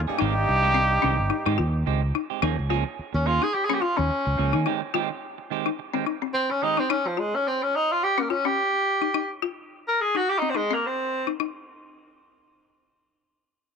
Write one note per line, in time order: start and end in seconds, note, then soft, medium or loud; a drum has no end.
0.07 1.83 G2 medium
0.07 0.20 A#3 soft
0.07 0.20 C#4 soft
0.07 1.82 D#4 medium
0.07 1.83 G4 loud
0.07 0.19 G#4 medium
0.07 muted fingered electric bass stroke soft
0.19 0.45 G#1 loud
0.19 0.35 D#3 medium
0.19 0.35 G#3 medium
0.19 0.34 C4 medium
0.19 0.27 D#4 medium
0.19 0.34 G4 medium
0.35 muted clean electric guitar stroke soft
0.48 0.96 C2 medium
0.48 muted clean electric guitar stroke soft
0.63 0.79 D#3 medium
0.63 0.78 G#3 medium
0.63 0.78 C4 medium
0.63 0.78 G4 medium
0.74 0.82 C4 medium
0.91 muted clean electric guitar stroke medium
1.02 1.17 C2 medium
1.02 1.18 D#3 medium
1.02 1.17 G#3 medium
1.02 1.17 C4 medium
1.02 1.10 C#4 medium
1.02 1.16 G4 medium
1.18 1.30 G1 medium
1.18 muted clean electric guitar stroke soft
1.30 1.38 D#4 medium
1.30 muted clean electric guitar stroke soft
1.46 1.57 G#2 medium
1.46 1.57 D#3 medium
1.46 1.57 G#3 medium
1.46 1.57 C4 medium
1.46 1.54 D#4 medium
1.46 1.58 G4 medium
1.58 1.83 D#2 loud
1.58 1.66 F4 medium
1.58 muted clean electric guitar stroke soft
1.86 2.11 C#2 medium
1.86 2.02 D#3 medium
1.86 2.02 G#3 medium
1.86 2.01 C4 medium
1.86 2.01 G4 medium
2.02 muted clean electric guitar stroke soft
2.15 2.23 D#4 medium
2.15 muted clean electric guitar stroke soft
2.30 2.42 G#3 medium
2.30 2.42 C4 medium
2.30 2.42 G4 medium
2.42 2.56 D#2 loud
2.42 2.58 F3 medium
2.42 2.57 A#3 medium
2.42 2.57 C#4 medium
2.42 2.50 D#4 medium
2.42 2.56 G#4 medium
2.57 2.83 C#2 medium
2.57 muted clean electric guitar stroke soft
2.69 2.85 F3 medium
2.69 2.84 A#3 medium
2.69 2.84 C#4 medium
2.69 2.78 F4 medium
2.69 2.84 G#4 medium
2.85 muted clean electric guitar stroke soft
2.99 muted fingered electric bass stroke soft
3.13 3.38 D#2 loud
3.13 3.28 C#4 medium
3.13 muted clean electric guitar stroke soft
3.26 3.44 A#3 medium
3.26 3.44 C#4 medium
3.26 3.45 F4 loud
3.26 3.44 G#4 medium
3.42 3.50 D#4 medium
3.42 3.56 G#4 medium
3.54 3.67 G4 medium
3.54 muted clean electric guitar stroke soft
3.65 3.76 G#4 medium
3.69 3.81 F3 medium
3.69 3.81 A#3 medium
3.69 3.81 C#4 medium
3.69 3.78 C#4 medium
3.69 3.81 G#4 medium
3.74 3.83 G4 medium
3.81 3.99 F4 medium
3.81 3.90 F4 medium
3.81 muted clean electric guitar stroke soft
3.97 4.09 D#2 medium
3.97 4.05 C#4 medium
3.97 4.66 C#4 medium
3.97 muted clean electric guitar stroke soft
4.10 muted clean electric guitar stroke soft
4.25 4.37 C#2 medium
4.25 muted clean electric guitar stroke soft
4.37 4.52 C#2 medium
4.37 4.53 F3 medium
4.37 4.53 A#3 medium
4.37 4.53 C#4 medium
4.37 4.52 G#4 medium
4.53 4.65 D#3 medium
4.53 4.66 A#3 soft
4.53 4.66 C#4 medium
4.53 4.61 D#4 medium
4.53 4.66 G#4 medium
4.66 4.81 D#3 medium
4.66 4.81 G#3 medium
4.66 4.81 C4 medium
4.66 4.74 D#4 medium
4.66 4.81 G4 medium
4.82 muted clean electric guitar stroke medium
4.94 5.10 D#3 medium
4.94 5.10 G#3 medium
4.94 5.09 C4 medium
4.94 5.02 F4 medium
4.94 5.09 G4 medium
5.10 muted clean electric guitar stroke soft
5.38 muted clean electric guitar stroke soft
5.50 5.68 D#3 medium
5.50 5.69 G#3 medium
5.50 5.69 C4 medium
5.50 5.69 G4 medium
5.66 5.74 D#4 medium
5.79 muted clean electric guitar stroke soft
5.94 6.05 D#3 medium
5.94 6.05 G#3 medium
5.94 6.02 C4 medium
5.94 6.05 C4 medium
5.94 6.06 G4 medium
6.06 6.14 D#4 medium
6.06 muted clean electric guitar stroke soft
6.22 6.30 C4 medium
6.22 muted clean electric guitar stroke soft
6.34 6.52 C4 medium
6.34 muted clean electric guitar stroke soft
6.50 6.65 C#4 medium
6.50 muted clean electric guitar stroke soft
6.62 6.78 D#3 medium
6.62 6.77 G#3 medium
6.62 6.77 C4 medium
6.62 6.81 D#4 loud
6.62 6.77 G4 medium
6.77 6.91 C4 soft
6.77 6.92 C4 medium
6.77 6.85 D#4 medium
6.77 6.90 G4 medium
6.77 muted clean electric guitar stroke soft
6.90 7.09 C#4 medium
6.90 6.98 D#4 medium
7.07 7.21 F3 medium
7.17 7.37 G#3 medium
7.17 7.25 F4 medium
7.35 7.49 C#4 loud
7.47 7.64 C4 medium
7.63 7.77 C#4 medium
7.76 7.94 D#4 loud
7.92 8.05 F4 medium
8.04 8.22 G4 loud
8.18 8.31 A#3 medium
8.18 8.26 C#4 medium
8.30 8.47 C#4 medium
8.30 8.38 F4 medium
8.45 8.53 C#4 medium
8.45 9.31 G4 medium
9.02 9.10 D#4 medium
9.14 9.22 D#4 medium
9.42 9.50 F4 medium
9.88 10.03 A#4 medium
10.01 10.18 G#4 loud
10.15 10.23 D#4 medium
10.15 10.31 F#4 medium
10.29 10.40 G4 medium
10.38 10.50 C4 medium
10.38 10.51 D#4 medium
10.50 10.58 C4 medium
10.54 10.75 G#3 medium
10.54 10.62 D#4 medium
10.71 10.88 A#3 medium
10.71 10.79 C4 medium
10.86 11.29 C4 medium
11.27 11.35 D#4 medium
11.40 11.48 D#4 medium